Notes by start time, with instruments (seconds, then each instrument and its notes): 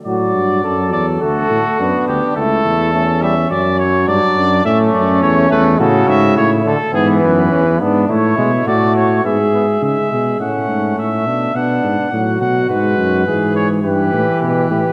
0.06 tuba A2, trombone F#3, flugelhorn F#4, trumpet D5
0.35 tuba G2
0.64 tuba F#2, trombone F#3, flugelhorn A4
0.92 tuba E2, trumpet D5
1.21 tuba D2, trombone A3, trumpet F#4, flugelhorn A4
1.50 tuba A2
1.79 tuba F#2, trombone B3, flugelhorn D4
2.08 tuba D2, trumpet G4
2.36 tuba C#2, trombone A3, flugelhorn E4, trumpet A4
2.65 tuba E2
2.93 trombone A3, flugelhorn C#4
3.22 trombone G3, trumpet E5
3.50 tuba F#2, trombone F#3, trumpet D5
3.79 trumpet C#5
4.08 tuba G2, flugelhorn D4, trumpet D5
4.37 tuba F#2
4.65 tuba A2, trombone A3, flugelhorn C#4, trumpet E5
4.93 tuba F#2, trumpet D5
5.22 tuba E2, trumpet C#5
5.50 tuba E2, trombone A3, trumpet B4
5.79 tuba A2, trombone C#3, flugelhorn F#4, trumpet A4
6.08 tuba G#2, trumpet E5
6.36 tuba A2, flugelhorn E4, trumpet C#5
6.65 trombone D3, trumpet A4
6.93 tuba G#2, trombone E3, flugelhorn B3, trumpet G#4
7.23 tuba F#2, trumpet B4
7.51 tuba E2, flugelhorn C#4
7.80 tuba G#2, trombone B3, flugelhorn D4
8.09 tuba A2, trombone A3, flugelhorn E4, trumpet C#5
8.38 tuba B2, trombone G#3
8.66 tuba A2, trombone A3, flugelhorn F#4, trumpet D5
8.95 trumpet C#5
9.24 tuba G#2, trombone B3, flugelhorn G#4, trumpet E5
9.53 trombone B3
9.82 tuba C#3, trombone G#3, trumpet E5
10.11 tuba B2, flugelhorn G#4
10.40 tuba A2, trombone A3, flugelhorn C#4, trumpet F#5
10.69 tuba G#2
10.98 tuba A2, trumpet E5
11.27 tuba B2, flugelhorn D4
11.55 tuba B2, trombone B3, flugelhorn D4, trumpet F#5
11.84 tuba G#2
12.12 tuba A2, trombone F#3, flugelhorn F#4
12.41 tuba B2, trumpet F#5
12.69 tuba G#2, trombone G#3, trumpet B4
12.98 tuba F#2
13.26 tuba G#2, trombone E3, flugelhorn G#4
13.55 trumpet C#5
13.83 tuba G2, trombone E3, flugelhorn G4, trumpet B4
14.13 tuba A2
14.42 tuba B2, trumpet B4
14.70 tuba A2, flugelhorn G4